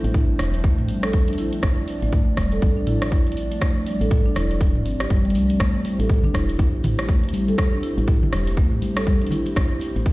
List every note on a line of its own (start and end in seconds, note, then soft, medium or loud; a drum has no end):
0.00 5.56 F3 medium
0.00 5.56 A3 medium
0.00 5.56 C4 medium
0.00 5.56 D4 medium
0.00 1.59 C5 medium
0.04 0.37 A1 medium
0.04 closed hi-hat soft
0.04 shaker soft
0.14 0.22 E4 medium
0.14 kick loud
0.14 closed hi-hat medium
0.14 mid tom medium
0.14 shaker soft
0.39 0.65 E1 medium
0.39 cross-stick medium
0.39 open hi-hat medium
0.39 shaker medium
0.54 0.63 A3 medium
0.54 closed hi-hat soft
0.54 shaker medium
0.64 1.60 A1 medium
0.64 0.72 A3 loud
0.64 kick loud
0.64 closed hi-hat medium
0.64 shaker soft
0.78 mid tom medium
0.88 1.02 G3 medium
0.88 open hi-hat medium
0.88 shaker medium
1.02 1.13 A4 loud
1.02 cross-stick medium
1.02 closed hi-hat soft
1.02 shaker soft
1.13 kick loud
1.13 closed hi-hat medium
1.13 shaker soft
1.28 1.38 D4 loud
1.28 closed hi-hat soft
1.33 closed hi-hat medium
1.38 1.52 E4 loud
1.38 open hi-hat medium
1.38 shaker medium
1.53 closed hi-hat soft
1.53 shaker soft
1.63 1.75 A1 loud
1.63 1.71 E4 medium
1.63 5.56 D5 medium
1.63 kick loud
1.63 cross-stick medium
1.63 closed hi-hat medium
1.63 shaker soft
1.88 open hi-hat medium
1.88 shaker medium
2.02 2.35 A1 medium
2.02 2.12 A3 medium
2.02 closed hi-hat soft
2.02 shaker soft
2.13 2.21 A3 loud
2.13 kick loud
2.13 closed hi-hat medium
2.13 mid tom medium
2.13 shaker soft
2.37 2.59 E1 medium
2.37 2.51 G3 medium
2.37 kick medium
2.37 cross-stick medium
2.37 open hi-hat medium
2.37 shaker medium
2.52 2.61 A4 loud
2.52 closed hi-hat soft
2.52 shaker medium
2.62 3.59 A1 loud
2.62 kick loud
2.62 closed hi-hat medium
2.62 shaker soft
2.77 2.87 D4 loud
2.86 3.01 E4 loud
2.86 mid tom loud
2.86 open hi-hat medium
2.86 shaker medium
3.02 cross-stick medium
3.02 closed hi-hat soft
3.02 shaker soft
3.12 3.20 E4 medium
3.12 kick loud
3.12 closed hi-hat medium
3.12 shaker soft
3.27 closed hi-hat soft
3.32 closed hi-hat medium
3.37 open hi-hat medium
3.37 shaker medium
3.51 3.60 A3 medium
3.51 closed hi-hat soft
3.51 shaker medium
3.61 3.69 A3 loud
3.61 kick loud
3.61 cross-stick medium
3.61 closed hi-hat medium
3.61 shaker soft
3.86 3.99 G3 medium
3.86 open hi-hat medium
3.86 shaker loud
4.01 4.33 A1 medium
4.01 4.10 A4 loud
4.01 closed hi-hat soft
4.01 shaker soft
4.11 kick loud
4.11 closed hi-hat medium
4.11 mid tom medium
4.11 shaker soft
4.26 4.35 D4 loud
4.36 4.87 E1 medium
4.36 4.50 E4 loud
4.36 cross-stick medium
4.36 open hi-hat medium
4.36 shaker medium
4.51 closed hi-hat soft
4.51 shaker soft
4.60 4.69 E4 medium
4.60 kick loud
4.60 closed hi-hat medium
4.60 shaker soft
4.75 mid tom medium
4.85 5.07 G1 loud
4.85 4.99 C4 medium
4.85 open hi-hat medium
4.85 shaker loud
5.00 5.10 G4 loud
5.00 cross-stick medium
5.00 closed hi-hat soft
5.00 shaker medium
5.10 5.36 G1 loud
5.10 5.24 G3 loud
5.10 kick loud
5.10 closed hi-hat medium
5.10 shaker soft
5.25 5.31 G3 loud
5.25 closed hi-hat soft
5.30 closed hi-hat medium
5.35 5.56 C2 loud
5.35 5.48 A3 medium
5.35 open hi-hat medium
5.35 shaker medium
5.50 5.59 C4 medium
5.50 closed hi-hat soft
5.50 shaker soft
5.60 5.72 A1 loud
5.60 10.13 A3 medium
5.60 5.68 A3 loud
5.60 10.13 C4 medium
5.60 10.13 E4 medium
5.60 10.13 G4 medium
5.60 10.13 C5 medium
5.60 kick loud
5.60 cross-stick medium
5.60 closed hi-hat medium
5.60 shaker soft
5.85 5.98 G3 medium
5.85 open hi-hat medium
5.85 muted conga medium
5.85 shaker medium
5.99 6.32 A1 medium
5.99 6.09 A4 loud
5.99 closed hi-hat soft
5.99 shaker medium
6.10 kick loud
6.10 closed hi-hat medium
6.10 mid tom medium
6.10 shaker soft
6.23 6.34 D4 loud
6.23 muted conga soft
6.23 low conga loud
6.34 6.56 E1 medium
6.34 6.48 E4 loud
6.34 kick medium
6.34 cross-stick medium
6.34 open hi-hat medium
6.34 high conga medium
6.34 shaker medium
6.49 closed hi-hat soft
6.49 shaker medium
6.59 7.56 A1 loud
6.59 6.67 E4 medium
6.59 kick loud
6.59 closed hi-hat medium
6.59 muted conga medium
6.59 high conga loud
6.59 shaker soft
6.84 mid tom loud
6.84 open hi-hat loud
6.84 low conga loud
6.84 shaker loud
6.98 7.08 A3 medium
6.98 cross-stick medium
6.98 closed hi-hat soft
6.98 high conga medium
6.98 shaker medium
7.08 7.17 A3 loud
7.08 kick loud
7.08 closed hi-hat medium
7.08 muted conga soft
7.08 shaker soft
7.24 closed hi-hat soft
7.29 closed hi-hat medium
7.33 7.47 G3 medium
7.33 open hi-hat medium
7.33 high conga medium
7.33 shaker medium
7.48 7.57 A4 loud
7.48 closed hi-hat soft
7.48 muted conga medium
7.48 high conga medium
7.48 shaker medium
7.58 kick loud
7.58 cross-stick loud
7.58 closed hi-hat medium
7.58 shaker soft
7.73 7.83 D4 loud
7.83 7.97 E4 loud
7.83 open hi-hat loud
7.83 muted conga medium
7.83 shaker medium
7.98 8.30 A1 medium
7.98 closed hi-hat soft
7.98 high conga medium
7.98 shaker medium
8.08 8.16 E4 medium
8.08 kick loud
8.08 closed hi-hat medium
8.08 mid tom medium
8.08 shaker soft
8.23 muted conga soft
8.23 low conga loud
8.32 8.59 E1 medium
8.32 cross-stick medium
8.32 open hi-hat medium
8.32 high conga medium
8.32 shaker medium
8.47 8.56 A3 medium
8.47 closed hi-hat soft
8.47 shaker medium
8.57 9.54 A1 medium
8.57 8.65 A3 loud
8.57 kick loud
8.57 closed hi-hat medium
8.57 muted conga medium
8.57 shaker soft
8.72 mid tom medium
8.82 8.95 G3 medium
8.82 open hi-hat loud
8.82 high conga loud
8.82 shaker loud
8.96 9.06 A4 loud
8.96 cross-stick loud
8.96 closed hi-hat soft
8.96 shaker medium
9.07 kick loud
9.07 closed hi-hat medium
9.07 muted conga soft
9.07 high conga loud
9.07 shaker soft
9.22 9.31 D4 loud
9.22 closed hi-hat soft
9.27 closed hi-hat medium
9.27 low conga loud
9.31 9.46 E4 loud
9.31 open hi-hat medium
9.31 high conga medium
9.31 shaker medium
9.46 closed hi-hat soft
9.46 muted conga medium
9.46 shaker medium
9.56 9.69 A1 loud
9.56 kick loud
9.56 cross-stick loud
9.56 closed hi-hat medium
9.56 shaker soft
9.80 open hi-hat medium
9.80 muted conga medium
9.80 shaker loud
9.96 10.13 A1 medium
9.96 10.05 A3 medium
9.96 closed hi-hat soft
9.96 shaker medium
10.05 10.13 A3 loud
10.05 kick loud
10.05 closed hi-hat medium
10.05 mid tom medium
10.05 shaker soft